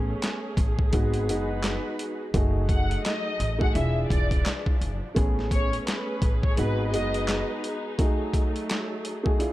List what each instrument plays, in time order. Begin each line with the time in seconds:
Already playing: upright bass A1, string section A3 C#4 G#4, grand piano A3 B3 C#4 G#4
0.22 snare, clap, closed hi-hat
0.57 upright bass A1, kick, closed hi-hat
0.79 kick
0.92 upright bass G#1, grand piano G#3 B3 D#4 F#4, string section D#4 F#4 B4, kick, closed hi-hat
1.14 closed hi-hat
1.27 upright bass F#1, grand piano G#3 B3 D#4 F#4, closed hi-hat
1.63 snare, clap, closed hi-hat
1.99 closed hi-hat
2.33 upright bass F#1, string section F#3 A3 D#4 G#4, grand piano A3 D#4 F#4 G#4, kick, closed hi-hat
2.69 violin section F#5, kick, closed hi-hat
2.91 closed hi-hat
3.05 violin section D#5, snare, clap, closed hi-hat
3.40 upright bass A1, closed hi-hat
3.58 grand piano A3 D#4 F#4 G#4, violin section F#5, kick
3.74 upright bass E1, string section E3 F3 D4, grand piano D4 E4 F4 G#4, violin section E5, closed hi-hat
4.10 upright bass E1, violin section D5, kick, closed hi-hat
4.31 kick, closed hi-hat
4.46 snare, clap, closed hi-hat
4.66 kick
4.81 upright bass F#1, closed hi-hat
5.14 upright bass A1, grand piano A3 B3 C#4 G#4, string section A3 C#4 G#4, kick, closed hi-hat
5.39 snare
5.51 violin section C#5, kick, closed hi-hat
5.73 closed hi-hat
5.86 violin section B4, snare, clap, closed hi-hat
6.22 upright bass A1, kick, closed hi-hat
6.43 violin section C#5, kick
6.56 upright bass G#1, grand piano G#3 B3 D#4 F#4, string section D#4 F#4 B4, violin section B4, closed hi-hat
6.92 upright bass F#1, grand piano G#3 B3 D#4 F#4, violin section D#5, closed hi-hat
7.14 closed hi-hat
7.28 snare, clap, closed hi-hat
7.64 closed hi-hat
7.98 string section F#3 A3 G#4, grand piano A3 D#4 F#4 G#4, kick, closed hi-hat
8.34 kick, closed hi-hat
8.56 closed hi-hat
8.70 snare, clap, closed hi-hat
9.05 closed hi-hat
9.23 grand piano A3 D#4 F#4 G#4, kick
9.38 string section E3 F3 D4, grand piano D4 E4 F4 G#4, closed hi-hat